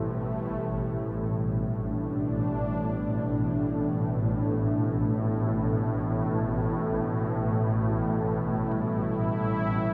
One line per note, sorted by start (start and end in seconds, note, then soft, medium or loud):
0.00 9.94 A1 medium
0.00 9.94 A2 medium
0.00 9.94 B2 medium
0.00 9.94 E3 medium
0.00 9.94 G3 medium
0.00 9.94 A3 medium
0.00 0.48 B3 medium
0.00 1.69 F#4 medium
0.00 9.94 G4 medium
0.99 8.23 D4 medium
3.69 9.72 A3 soft
7.93 9.94 E4 medium
8.71 9.94 G3 medium